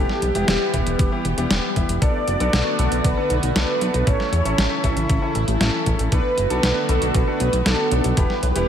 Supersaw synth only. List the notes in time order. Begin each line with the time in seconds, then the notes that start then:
Already playing: G4
2.02 D5
2.79 D5
3.05 B4
3.56 B4
4.07 C#5
6.12 B4
6.51 B4
6.89 A4
7.15 B4
7.66 A4
8.17 B4